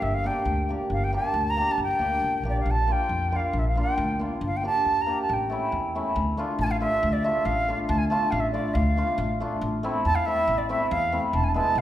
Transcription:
0.02 G1 E5
0.14 F5
0.24 A#3 D4 G4 G5
0.45 D2
0.69 A#3 D4 G4
0.90 G1 F5
1.03 G5
1.13 A#3 D4 G4 A5
1.34 D2
1.50 A#5
1.56 A#3 D4 G4
1.71 A5
1.78 G1
1.82 G5
1.99 D2 A#3 D4 G4
2.22 C#2
2.43 A#1 A#3 D4 G4
2.49 D5
2.60 F5
2.66 A#1
2.70 A5
2.87 A#3 D4 F4 G5
3.09 F2
3.32 A#3 D4 F4 F5
3.53 A#1
3.58 E5
3.68 F5
3.75 A#3 D4 F4 G5
3.98 D2
4.19 A#3 D4 F4
4.41 G1
4.46 F5
4.56 G5
4.63 A#3 D4 G4 A5
4.85 E2
5.01 A#5
5.06 A#3 D4 G4
5.21 A5
5.29 A1 G5
5.50 A3 C#4 E4
5.72 E2
5.95 A3 C#4 E4
6.16 D2
6.37 A3 D4 F4
6.59 A1 G#5 A5
6.65 A5
6.70 F5
6.80 A3 D4 F4 E5
7.03 D2
7.12 D5
7.24 A3 D4 F4 E5
7.45 A1 F5
7.68 A3 D4 F4
7.88 D2 A5
7.97 G#5
8.08 A3 D4 F4 A5
8.31 A1 F5
8.39 E5
8.51 A3 D4 F4 D5
8.73 D2 F5
8.97 A3 D4 F4
9.18 A1
9.40 A3 D4 F4
9.61 A1
9.83 A3 C4 E4
10.05 E2 A5
10.15 F5
10.25 A3 C4 E4 E5
10.48 A1
10.57 D5
10.69 A3 C4 E4 E5
10.90 E2 F5
11.12 A3 C4 E4
11.33 E1 A5
11.43 G#5
11.48 A5
11.54 G#3 B3 E4 A5
11.75 B1 F5

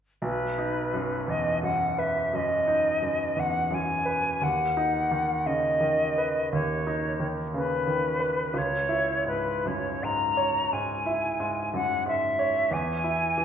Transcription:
0.22 B1 B4
0.58 D#4
0.94 F#2
1.28 E2 D#5
1.62 F#2 F#5
1.98 B4 E5
2.33 F#2 D#5
2.68 D#4
3.02 F#2
3.36 E2 F#5
3.71 F#2 G#5
4.05 B4
4.42 D#2 F#5
4.77 D#4
5.11 D#3
5.46 C#3 D#5
5.81 D#3
6.18 B4
6.53 D#2 C#5
6.87 D#4
7.20 D#3
7.54 C#3 B4
7.87 D#3
8.20 B4
8.54 C#2 C#5
8.89 E4
9.26 G#2 B4
9.65 F#2 C#5
10.03 G#2 A#5
10.37 C#5
10.72 G#2 G#5
11.06 E4
11.40 G#2
11.74 F#2 F#5
12.06 G#2 E5
12.39 C#5
12.71 E2 G#5
13.04 E4
13.38 E3

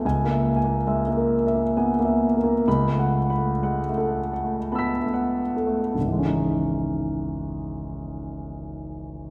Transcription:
0.05 C#2 G#5
0.25 A#3
0.31 E5
0.56 G#5
0.64 A#3
0.87 G#3 E5
1.08 A#3
1.17 A#4
1.47 E5
1.54 A#3
1.77 B3 G#5
1.99 A#3
2.05 E5
2.37 A#4
2.44 A#3
2.68 C#2 B5
2.92 A3
2.99 F#5
3.30 B5
3.38 A3
3.62 G#3 F#5
3.89 A3
3.98 A4
4.33 F#5
4.44 A3
4.72 B3 A5 B5 E6
4.79 B6
5.01 A3
5.13 F#5
5.56 A4
5.66 A3
5.94 C#1
6.01 G#1
6.06 E3
6.12 G#3
6.19 C#4
6.25 D#4

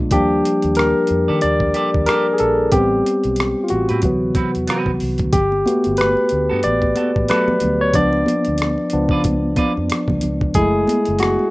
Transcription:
Already playing: A#1 G#3 B3 D4 F4
0.11 D#2 F3 G3 A#3 D4 G4, kick, closed hi-hat
0.45 closed hi-hat
0.62 D#2, closed hi-hat
0.75 A#4, closed hi-hat
0.79 cross-stick
1.07 F2, closed hi-hat
1.28 D#3 G4 A4 D5
1.41 D#2 D5, closed hi-hat
1.60 kick
1.74 G4 A4 D5, closed hi-hat
1.94 D#2, kick
2.06 G4 A4 A#4 D5, cross-stick, closed hi-hat
2.33 G#4
2.38 A#1 A4, closed hi-hat
2.72 A1 G3 B3 C4 G4, kick, closed hi-hat
3.06 closed hi-hat
3.24 B1, closed hi-hat
3.36 closed hi-hat
3.40 cross-stick
3.64 F4
3.68 A1 F#4, closed hi-hat
3.89 A2 C4 G4 B4, closed hi-hat
4.02 D2 C3 E3 F#3 B3, kick, closed hi-hat
4.35 C4 F#4 B4, kick, closed hi-hat
4.55 E2, closed hi-hat
4.67 C4 F#4 B4, cross-stick, closed hi-hat
4.86 C2, kick
5.00 C2, open hi-hat
5.18 D2, kick, closed hi-hat
5.33 G1 G4, kick, closed hi-hat, muted conga, low conga
5.52 muted conga
5.66 A3 B3 F#4, closed hi-hat, high conga
5.84 G1, closed hi-hat
5.97 B4, closed hi-hat, muted conga, high conga
6.01 cross-stick
6.17 muted conga
6.29 D2, closed hi-hat
6.49 G2 B3 F#4 A4
6.63 A1 D5, closed hi-hat, high conga
6.82 kick, muted conga
6.96 B3 F#4 A4, closed hi-hat, high conga
7.16 A1, kick, high conga
7.28 F#3 A3 B3 F#4 A4 B4, cross-stick, closed hi-hat
7.48 muted conga, high conga, low conga
7.60 D2, closed hi-hat, low conga
7.81 C#5
7.94 C#2 F3 B3 D4 D5, kick, closed hi-hat, low conga
8.13 muted conga
8.26 closed hi-hat, high conga
8.45 D2, closed hi-hat
8.58 closed hi-hat, high conga
8.62 cross-stick
8.78 muted conga
8.90 F3 B3 D4, closed hi-hat
8.94 C#2
9.09 C#3 F4 B4 D5, kick
9.24 C#2, kick, closed hi-hat, muted conga, high conga
9.56 F4 B4 D5, kick, closed hi-hat, high conga
9.77 F2, high conga
9.90 cross-stick, closed hi-hat
10.08 C#2, kick, muted conga, high conga, low conga
10.21 C#2, closed hi-hat, low conga
10.41 kick
10.54 F#1 G#3 A3 E4 G#4, kick, closed hi-hat, low conga
10.87 closed hi-hat, high conga
11.05 F#1, closed hi-hat
11.19 F#4, closed hi-hat, high conga
11.23 cross-stick
11.39 muted conga

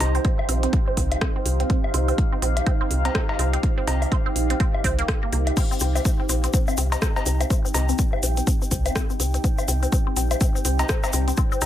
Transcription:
Already playing: D#4 G4 C5 F5
0.00 C2, open hi-hat, cowbell
0.15 C4, open hi-hat
0.25 C4, kick, closed hi-hat
0.39 low woodblock
0.49 A#1 C4, open hi-hat
0.63 C4, closed hi-hat
0.73 kick, closed hi-hat
0.88 C4
0.97 C2 C4, kick, open hi-hat
1.12 closed hi-hat, low woodblock
1.21 C4, kick, cross-stick, closed hi-hat
1.36 C4
1.46 C2, open hi-hat
1.60 C4, closed hi-hat
1.70 C4, kick, closed hi-hat
1.84 low woodblock
1.94 C2 C4, open hi-hat
2.08 C4, open hi-hat
2.18 kick, closed hi-hat
2.33 C4
2.42 A#1 C4, open hi-hat
2.57 closed hi-hat, low woodblock
2.66 C4, kick, closed hi-hat
2.81 C4
2.91 C2, open hi-hat
3.05 C4, closed hi-hat, cowbell
3.15 C4, kick, cross-stick, closed hi-hat
3.29 cowbell, low woodblock
3.39 C2 C4, open hi-hat
3.53 C4, closed hi-hat
3.63 kick, closed hi-hat
3.78 C4
3.87 C2 C4, open hi-hat, cowbell
4.02 open hi-hat, low woodblock
4.12 C4, kick, closed hi-hat
4.26 C4
4.36 A#1, open hi-hat
4.50 C4, closed hi-hat
4.60 C4, kick, closed hi-hat
4.74 low woodblock
4.84 C2 C4, kick, open hi-hat
4.99 A#3, closed hi-hat
5.08 kick, cross-stick, open hi-hat
5.23 A#3
5.33 C2 A#3, open hi-hat
5.47 closed hi-hat, low woodblock
5.57 C4, kick, closed hi-hat, crash, shaker
5.71 C4, shaker
5.80 C2 C4, open hi-hat, shaker
5.95 C4, open hi-hat, low woodblock, shaker
6.02 C4 G5, kick, closed hi-hat, shaker
6.20 C4
6.29 A#1 C4, open hi-hat, shaker
6.44 C4, closed hi-hat, shaker
6.54 C4, kick, closed hi-hat, shaker
6.68 C4, low woodblock, shaker
6.77 C2 C4, open hi-hat, shaker
6.92 C4, closed hi-hat, cowbell, shaker
7.02 C4, kick, cross-stick, closed hi-hat, shaker
7.16 C4, cowbell, shaker
7.26 C2 C4, open hi-hat, shaker
7.41 C4, closed hi-hat, low woodblock, shaker
7.50 C4, kick, closed hi-hat, shaker
7.65 C4, shaker
7.74 C2 C4, open hi-hat, cowbell, shaker
7.89 C4, open hi-hat, shaker
7.98 C4, kick, closed hi-hat, shaker
8.13 C4, low woodblock
8.23 A#1 C4, open hi-hat, shaker
8.37 C4, closed hi-hat, shaker
8.47 C4, kick, closed hi-hat, shaker
8.62 C4, shaker
8.71 C2 C4, kick, open hi-hat, shaker
8.86 C4, closed hi-hat, low woodblock, shaker
8.96 C4, kick, cross-stick, closed hi-hat, shaker
9.10 C4, shaker
9.20 C2 C4, open hi-hat, shaker
9.34 C4, closed hi-hat, shaker
9.44 C4, kick, closed hi-hat, shaker
9.58 C4, low woodblock, shaker
9.68 C2 C4, open hi-hat, shaker
9.75 D5
9.83 C4, open hi-hat, shaker
9.92 C4, kick, closed hi-hat, shaker
10.07 C4
10.17 A#1 C4, open hi-hat, shaker
10.31 C4, closed hi-hat, low woodblock, shaker
10.41 C4, kick, closed hi-hat, shaker
10.55 C4, shaker
10.65 C2 C4, open hi-hat, shaker
10.79 C4, closed hi-hat, cowbell, shaker
10.89 C4, kick, cross-stick, closed hi-hat, shaker
11.03 C4, cowbell, low woodblock, shaker
11.13 C2 C4, open hi-hat, shaker
11.28 C4, closed hi-hat, shaker
11.37 C4, kick, closed hi-hat, shaker
11.52 C4, shaker
11.62 C2 C4, open hi-hat, cowbell, shaker

